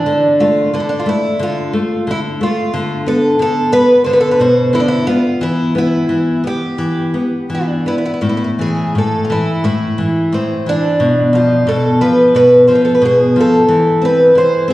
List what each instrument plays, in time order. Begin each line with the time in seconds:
Already playing: twelve-string acoustic guitar D4
0.06 nylon-string guitar D3
0.40 nylon-string guitar A3, twelve-string acoustic guitar F4
0.74 nylon-string guitar D3, twelve-string acoustic guitar D4
0.80 twelve-string acoustic guitar E4
0.89 twelve-string acoustic guitar D4
0.99 twelve-string acoustic guitar F4
1.06 nylon-string guitar A3, twelve-string acoustic guitar E4
1.39 nylon-string guitar D3, twelve-string acoustic guitar F4
1.73 nylon-string guitar A3
2.07 nylon-string guitar D3, twelve-string acoustic guitar E4
2.41 nylon-string guitar A3, twelve-string acoustic guitar F4
2.73 nylon-string guitar D3
3.06 nylon-string guitar B3, twelve-string acoustic guitar A4
3.39 nylon-string guitar D3, twelve-string acoustic guitar A4
3.72 nylon-string guitar B3, twelve-string acoustic guitar B4
4.04 nylon-string guitar D3, twelve-string acoustic guitar C5
4.13 twelve-string acoustic guitar B4
4.21 twelve-string acoustic guitar A4
4.31 twelve-string acoustic guitar B4
4.40 nylon-string guitar B2, twelve-string acoustic guitar C5
4.73 nylon-string guitar D3, twelve-string acoustic guitar E4
4.80 twelve-string acoustic guitar D4
4.88 twelve-string acoustic guitar E4
5.07 nylon-string guitar B3, twelve-string acoustic guitar F4
5.41 nylon-string guitar E3, twelve-string acoustic guitar E4
5.75 nylon-string guitar B3, twelve-string acoustic guitar E4
6.09 nylon-string guitar E3
6.44 nylon-string guitar B3, twelve-string acoustic guitar G4
6.78 nylon-string guitar E3
7.14 nylon-string guitar B3
7.50 nylon-string guitar E3
7.55 twelve-string acoustic guitar D4
7.86 nylon-string guitar B3, twelve-string acoustic guitar E4
7.98 twelve-string acoustic guitar E4
8.06 twelve-string acoustic guitar E4
8.14 twelve-string acoustic guitar E4
8.21 nylon-string guitar A2, twelve-string acoustic guitar E4
8.29 twelve-string acoustic guitar E4
8.37 twelve-string acoustic guitar E4
8.44 twelve-string acoustic guitar E4
8.59 nylon-string guitar E3, twelve-string acoustic guitar G#4
8.95 nylon-string guitar A2, twelve-string acoustic guitar A4
9.25 twelve-string acoustic guitar F4
9.30 nylon-string guitar E3, twelve-string acoustic guitar E4
9.64 nylon-string guitar A2, twelve-string acoustic guitar E4
9.98 nylon-string guitar E3
10.32 nylon-string guitar A2, twelve-string acoustic guitar C4
10.66 nylon-string guitar E3, twelve-string acoustic guitar D4
11.00 nylon-string guitar B2
11.33 nylon-string guitar F3, twelve-string acoustic guitar F4
11.67 nylon-string guitar B2, twelve-string acoustic guitar A4
12.01 nylon-string guitar F3, twelve-string acoustic guitar B4
12.35 nylon-string guitar B2, twelve-string acoustic guitar B4
12.67 nylon-string guitar F3, twelve-string acoustic guitar C5
12.75 twelve-string acoustic guitar B4
12.85 twelve-string acoustic guitar A4
12.95 twelve-string acoustic guitar B4
13.02 nylon-string guitar B2, twelve-string acoustic guitar G#4
13.36 nylon-string guitar F3
13.40 twelve-string acoustic guitar A4
13.68 nylon-string guitar E3
14.02 nylon-string guitar C4, twelve-string acoustic guitar B4
14.35 nylon-string guitar E3, twelve-string acoustic guitar C5
14.68 nylon-string guitar C4, twelve-string acoustic guitar G#4